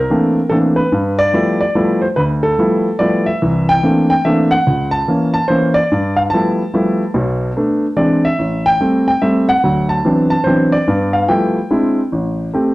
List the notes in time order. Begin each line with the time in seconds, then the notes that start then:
Already playing: A#4
0.10 E3 A3 A#3 C4 D4
0.50 E3 A3 A#3 C4 D4 A4
0.76 B4
0.92 G2
1.19 D5
1.33 F3 G3 A3 B3 E4
1.61 D5
1.75 F3 G3 A3 B3 E4
2.02 C5
2.16 D2 B4
2.43 A4
2.59 F3 G3 A3 B3 E4
2.99 F3 G3 A3 B3 E4 D5
3.26 E5
3.42 C2 E3
3.69 G5
3.83 E3 A3 A#3 C4 D4
4.10 G5
4.25 E3 A3 A#3 C4 D4 E5
4.51 F#5
4.67 C#2
4.91 A5
5.08 E3 A#3 C#4
5.34 A5
5.48 E3 A#3 C#4 C5
5.74 D5
5.92 G2
6.17 F5
6.30 F3 G3 A3 B3 A5
6.34 E4
6.74 F3 G3 A3 B3 E4
7.14 B1 B2
7.57 A3 B3 D4
7.97 E3 G#3 C4 D4 D5
8.25 E5
8.39 A1
8.66 G5
8.80 G3 A3 C4
9.08 G5
9.22 G3 A3 C4 E5
9.49 F#5
9.63 D2 F#3
9.89 A5
10.05 E3 F#3 B3 C4 D4
10.30 A5
10.44 E3 F#3 B3 C4 D4 C5
10.72 D5
10.88 G2 B3
11.13 F5
11.28 F3 G3 A3 B3 E4 G5
11.71 G#3 C4 D4 E4
12.12 A1
12.54 A3 C4 G4